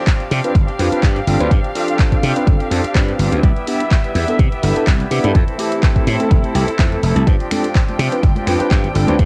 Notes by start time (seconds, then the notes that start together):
Already playing: G4 F5
0.06 F3 C4 G4, kick, clap, closed hi-hat
0.20 closed hi-hat
0.30 C3 F3 C4 D4 G4, open hi-hat
0.44 C4 D4 F4 B4, closed hi-hat
0.55 G1, kick, closed hi-hat
0.67 C4 D4 G4, closed hi-hat
0.78 F2 F3 C4 D4 F4 G4 B4, open hi-hat
0.91 C4 D4 F4 G4 B4, muted slap bass stroke, closed hi-hat
1.02 G2 F3 D4, kick, clap, closed hi-hat
1.16 closed hi-hat
1.26 G1 F3 C4 D4 F4 G4 A4, open hi-hat
1.39 D2 C4 D4 F4 G4 B4, closed hi-hat
1.50 G2 F3 C4 D4 G4, kick, closed hi-hat
1.64 closed hi-hat
1.74 F3 C4 D4 F4 G4 A4, open hi-hat
1.88 closed hi-hat
1.99 F3 C4 D4 G4, kick, clap, closed hi-hat
2.12 kick, closed hi-hat
2.22 C3 F3 C4 D4 G4, open hi-hat
2.36 C4 D4 F4 B4, closed hi-hat
2.47 G1 C4 A4, kick, closed hi-hat
2.59 C4 D4 G4, closed hi-hat
2.70 F2 F3 C4 D4 F4 G4 A4, open hi-hat
2.83 C4 D4 G4, muted slap bass stroke, closed hi-hat
2.95 G2 F3 C4 D4 F4 G4 B4, kick, clap, closed hi-hat
3.08 closed hi-hat
3.19 G1 F3 C4 D4 G4, open hi-hat
3.31 D2 C4 D4 G4, closed hi-hat
3.43 C2 G3 B3 E4 G4 B4 E5, kick, closed hi-hat
3.56 closed hi-hat
3.67 G3 B3 D4 E4 G4, open hi-hat
3.80 closed hi-hat
3.91 G3 B3 E4 G4, kick, clap, closed hi-hat
4.04 closed hi-hat
4.15 E2 G3 B3 E4 G4, open hi-hat
4.28 B3 D4 E4 A4, closed hi-hat
4.39 C3, kick, closed hi-hat
4.51 B3 E4 G4, closed hi-hat
4.62 G1 G3 B3 D4 E4 G4 A4, open hi-hat
4.75 B3 D4 E4 G4 A4, muted slap bass stroke, closed hi-hat
4.87 C2 G3 B3 E4 G4, kick, clap, closed hi-hat
5.00 closed hi-hat
5.10 C3 G3 B3 D4 E4 G4, open hi-hat
5.23 G2 B3 D4 E4 G4 A4, closed hi-hat
5.35 F2 E3 C4 E4 A4, kick, closed hi-hat
5.48 closed hi-hat
5.58 E3 A3 C4 E4 G4 A4, open hi-hat
5.72 closed hi-hat
5.83 E3 C4 E4 A4, kick, clap, closed hi-hat
5.96 kick, closed hi-hat
6.06 A2 E3 C4 E4 A4, open hi-hat
6.19 A3 C4 E4 A4, closed hi-hat
6.31 F1, kick, closed hi-hat
6.43 C4 E4 A4, muted slap bass stroke, closed hi-hat
6.54 C2 E3 A3 C4 E4 G4 A4, open hi-hat
6.67 C4 E4 A4, closed hi-hat
6.78 F2 E3 A3 C4 E4 A4, kick, clap, closed hi-hat
6.92 closed hi-hat
7.02 F1 E3 C4 E4 A4, open hi-hat
7.15 C2 C4 E4 A4, closed hi-hat
7.27 G2 F3 C4 D4 F4 G4 G5, kick, closed hi-hat, tambourine
7.40 closed hi-hat, tambourine
7.50 F3 C4 D4 F4 G4 A4, finger snap, open hi-hat, tambourine, high conga
7.64 closed hi-hat, tambourine
7.74 F3 C4 D4 G4, kick, clap, closed hi-hat
7.88 closed hi-hat, tambourine, high conga
7.98 C3 F3 C4 D4 G4, finger snap, open hi-hat, tambourine
8.12 C4 D4 F4 B4, closed hi-hat, tambourine
8.23 G1, kick, closed hi-hat, tambourine
8.35 C4 D4 G4, closed hi-hat, tambourine, high conga
8.46 F2 F3 C4 D4 F4 G4 B4, finger snap, open hi-hat, tambourine
8.59 C4 D4 F4 G4 B4, muted slap bass stroke, closed hi-hat, tambourine
8.71 G2 F3 C4 D4 G4, kick, clap, closed hi-hat, tambourine, high conga
8.84 closed hi-hat, low conga
8.94 G1 F3 C4 D4 F4 G4 A4, open hi-hat, tambourine
9.07 D2 C4 D4 F4 G4 B4, closed hi-hat, tambourine, high conga
9.18 G2 F3 C4 D4 G4, kick, closed hi-hat, tambourine